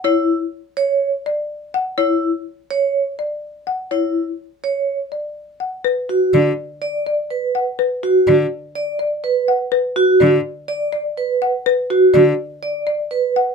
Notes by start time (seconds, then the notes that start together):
Already playing: F#5
0.04 E4 C#5
0.77 C#5
1.26 D5
1.74 F#5
1.98 E4 C#5
2.71 C#5
3.19 D5
3.67 F#5
3.91 E4 C#5
4.64 C#5
5.12 D5
5.60 F#5
5.85 B4
6.09 F#4
6.34 D3 D5
6.82 D5
7.06 D5
7.31 B4
7.55 F#5
7.79 B4
8.03 F#4
8.27 D3 D5
8.75 D5
8.99 D5
9.24 B4
9.48 F#5
9.72 B4
9.96 F#4
10.20 D3 D5
10.68 D5
10.93 D5
11.18 B4
11.42 F#5
11.66 B4
11.90 F#4
12.14 D3 D5
12.63 D5
12.87 D5
13.11 B4
13.36 F#5